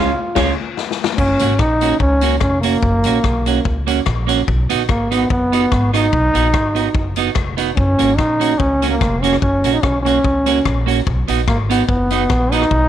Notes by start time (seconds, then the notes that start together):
Already playing: C#2 C#4 F4 G#4 C#5
0.35 C#2 G#3 C#4 F4 G#4 C#5, kick, snare, crash
0.77 snare
0.91 snare
1.04 snare
1.17 F#1 C#4, kick, crash
1.39 G#1 A#3 C#4 F#4, closed hi-hat
1.59 A#1 D#4, kick, cross-stick
1.81 A#3 C#4 F#4, closed hi-hat
2.00 C#2 C#4, muted clean electric guitar stroke, kick
2.21 A#3 C#4 F#4, closed hi-hat
2.40 F1 C#4, kick, cross-stick
2.61 A#3 C#4 F#4, closed hi-hat
2.83 F#1, kick
3.04 A#1 A#3 C#4 F#4, closed hi-hat
3.24 B1, kick, cross-stick
3.46 A#3 C#4 F#4, closed hi-hat
3.65 C#2, muted clean electric guitar stroke, kick
3.87 A#3 C#4 F#4, closed hi-hat
4.06 A#1, kick, cross-stick
4.27 A#3 C#4 F#4, closed hi-hat
4.48 B1, kick
4.70 A#1 B3 D#4 F#4, closed hi-hat
4.89 G#1 A#3, kick, cross-stick
5.11 B3 D#4 F#4, closed hi-hat
5.30 F#1 B3, muted clean electric guitar stroke, kick
5.52 B3 D#4 F#4, closed hi-hat
5.72 G#1, kick, cross-stick
5.94 B3 D#4 F#4, cross-stick, closed hi-hat
6.13 B1, kick
6.34 A#1 B3 D#4 F#4, closed hi-hat
6.54 kick, cross-stick
6.75 B3 D#4 F#4, closed hi-hat
6.95 F#1, muted clean electric guitar stroke, kick
7.16 B3 D#4 F#4, closed hi-hat
7.35 F1, kick, cross-stick
7.57 B3 D#4 F#4, closed hi-hat
7.72 D#4
7.76 F#1 C#4, kick
7.99 G#1 A#3 C#4 F#4, closed hi-hat
8.17 A#1 D#4, kick, cross-stick
8.40 A#3 C#4 F#4, closed hi-hat
8.58 C#2 C#4, muted clean electric guitar stroke, kick
8.82 A#3 C#4 F#4, closed hi-hat
8.90 A#3
9.01 F1, kick, cross-stick
9.21 A#3 C#4 F#4, closed hi-hat
9.33 cross-stick
9.40 F#1 C#4, kick
9.64 A#1 A#3 C#4 F#4, closed hi-hat
9.73 D#4
9.81 B1 C#4, kick, cross-stick
10.02 A#3 C#4, closed hi-hat
10.06 C#4 F#4
10.24 C#2, muted clean electric guitar stroke, kick
10.46 A#3 C#4 F#4, closed hi-hat
10.65 A#1, kick, cross-stick
10.86 A#3 C#4 F#4, closed hi-hat
11.07 B1, kick
11.28 A#1 B3 D#4 F#4, closed hi-hat
11.47 G#1 A#3, kick, cross-stick
11.70 B3 D#4 F#4, closed hi-hat
11.88 F#1 B3, muted clean electric guitar stroke, kick
12.10 B3 D#4 F#4, closed hi-hat
12.30 A#1, kick, cross-stick
12.52 B3 D#4 F#4, closed hi-hat
12.62 cross-stick
12.71 B1, kick